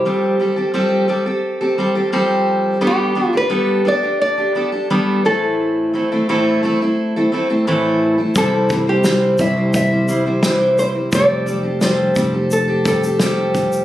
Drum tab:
SH |----------------|----------------|----------------|x-x-x-x-x-x-x-x-|
SD |----------------|----------------|----------------|----o-------o---|
BD |----------------|----------------|----------------|o-o---o-o-------|

SH |x-x-x-x-x-xxx-xx|
SD |----o-------o---|
BD |o-----o---o---o-|